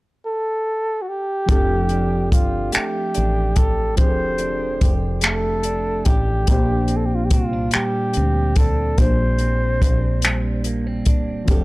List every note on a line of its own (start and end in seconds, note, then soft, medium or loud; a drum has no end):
0.26 1.04 A4 medium
1.02 1.10 F#4 soft
1.09 2.32 G4 medium
1.46 2.33 F1 medium
1.46 3.93 F3 medium
1.46 3.97 F3 medium
1.46 3.94 C4 medium
1.46 3.95 D4 medium
1.46 2.32 G4 soft
1.46 kick medium
1.46 closed hi-hat medium
1.51 3.96 G4 medium
1.51 3.96 A4 medium
1.89 3.14 D4 soft
1.89 closed hi-hat soft
2.32 2.70 G1 medium
2.32 2.75 F4 medium
2.32 3.56 G4 soft
2.32 kick medium
2.32 closed hi-hat medium
2.72 5.22 A3 soft
2.72 3.58 G4 medium
2.72 finger snap loud
2.72 muted fretless electric bass stroke soft
2.72 closed hi-hat medium
3.14 4.00 A1 medium
3.14 4.39 D4 soft
3.14 closed hi-hat soft
3.56 3.98 G4 medium
3.56 3.97 A4 medium
3.56 kick medium
3.56 closed hi-hat medium
3.96 4.78 F1 medium
3.96 6.44 F3 medium
3.96 7.47 F3 medium
3.96 6.44 C4 soft
3.96 6.45 D4 soft
3.96 4.82 G4 medium
3.96 4.92 C5 loud
3.96 kick medium
3.96 closed hi-hat medium
4.02 6.46 G4 soft
4.02 4.07 G#4 soft
4.09 6.50 A4 medium
4.38 5.64 D4 soft
4.38 closed hi-hat soft
4.81 6.03 F1 medium
4.81 6.06 G4 medium
4.81 kick medium
4.81 closed hi-hat medium
5.21 6.57 A3 medium
5.21 6.07 A4 medium
5.21 finger snap loud
5.21 closed hi-hat medium
5.63 6.48 D4 soft
5.63 closed hi-hat medium
6.05 6.45 A1 medium
6.05 6.98 G4 medium
6.05 9.57 G4 medium
6.05 kick medium
6.05 closed hi-hat medium
6.47 7.32 A#1 medium
6.47 8.94 A#2 medium
6.47 8.98 A#2 medium
6.47 8.95 A#3 soft
6.47 6.56 C4 soft
6.47 7.31 D4 medium
6.47 kick medium
6.47 closed hi-hat medium
6.51 8.96 G4 soft
6.51 8.97 C5 medium
6.57 8.98 D4 soft
6.88 7.31 C4 soft
6.88 closed hi-hat soft
6.97 7.07 A4 medium
7.06 7.17 G4 medium
7.15 7.26 F4 medium
7.25 7.32 G4 medium
7.31 7.70 C2 medium
7.31 7.53 C4 medium
7.31 7.73 F4 medium
7.31 kick medium
7.31 closed hi-hat medium
7.53 8.57 D4 soft
7.71 10.24 G3 medium
7.71 8.58 G4 medium
7.71 finger snap medium
7.71 closed hi-hat medium
7.76 muted fretless electric bass stroke soft
8.13 8.95 D2 medium
8.13 9.40 C4 soft
8.13 closed hi-hat soft
8.56 9.00 D4 medium
8.56 9.00 A4 medium
8.56 kick medium
8.56 closed hi-hat medium
8.96 9.78 A#1 medium
8.96 11.43 A#2 medium
8.96 11.44 A#3 soft
8.96 11.45 D4 soft
8.96 10.65 C5 medium
8.96 kick medium
8.96 closed hi-hat medium
9.00 11.49 A#2 medium
9.00 9.81 D4 medium
9.00 11.45 G4 soft
9.00 11.46 C5 medium
9.38 10.66 C4 medium
9.38 closed hi-hat soft
9.82 11.08 A#1 medium
9.82 11.07 D4 soft
9.82 kick medium
9.82 closed hi-hat medium
10.22 11.48 G3 medium
10.22 finger snap loud
10.22 closed hi-hat medium
10.64 10.87 A#3 soft
10.64 closed hi-hat soft
10.87 11.57 C4 soft
11.05 11.45 E1 medium
11.05 11.64 D4 medium
11.05 kick medium
11.05 closed hi-hat medium
11.45 11.64 F3 medium
11.45 11.64 C4 medium
11.45 11.64 D4 medium
11.45 kick medium
11.45 closed hi-hat medium
11.49 11.64 F1 medium
11.49 11.64 G4 soft
11.49 11.64 G4 medium
11.49 11.64 A4 medium